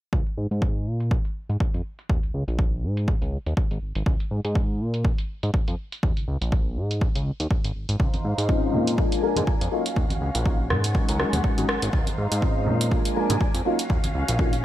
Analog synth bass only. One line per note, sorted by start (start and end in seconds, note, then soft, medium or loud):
0.13 0.22 C#2 medium
0.37 0.47 G#2 medium
0.51 0.88 G#2 loud
0.86 1.18 A#2 medium
1.49 1.57 G#2 medium
1.74 1.82 F2 loud
2.10 2.19 D#2 medium
2.23 2.32 C#2 soft
2.34 2.44 C#2 medium
2.48 2.85 A#1 loud
2.83 3.15 G#2 medium
3.22 3.38 C#2 medium
3.46 3.54 D#2 medium
3.71 3.78 G#1 medium
3.82 3.93 G#1 soft
3.96 4.03 G#1 medium
4.06 4.16 C#2 loud
4.31 4.40 G#2 medium
4.45 4.82 G#2 loud
4.80 5.12 A#2 medium
5.43 5.51 G#2 medium
5.68 5.75 F2 loud
6.03 6.12 D#2 medium
6.17 6.26 C#2 soft
6.28 6.37 C#2 medium
6.41 6.78 A#1 loud
6.77 7.08 G#2 medium
7.15 7.31 C#2 medium
7.40 7.47 D#2 medium
7.65 7.72 G#1 medium
7.76 7.86 G#1 soft
7.89 7.96 G#1 loud
8.00 8.09 C#2 loud
8.25 8.34 G#2 medium
8.38 8.75 G#2 medium
8.74 9.05 A#2 medium
9.37 9.44 G#2 loud
9.61 9.69 F2 loud
9.96 10.06 D#2 loud
10.10 10.19 C#2 soft
10.21 10.31 C#2 medium
10.35 10.72 A#1 loud
10.70 11.02 G#2 medium
11.09 11.25 C#2 medium
11.33 11.41 D#2 medium
11.58 11.65 G#1 medium
11.69 11.80 G#1 soft
11.82 11.90 G#1 loud
11.93 12.03 C#2 loud
12.18 12.27 G#2 medium
12.32 12.69 G#2 loud
12.67 12.99 A#2 medium
13.30 13.37 G#2 loud
13.54 13.62 F2 loud
13.90 13.99 D#2 loud
14.04 14.12 C#2 soft
14.15 14.24 C#2 medium
14.29 14.65 A#1 loud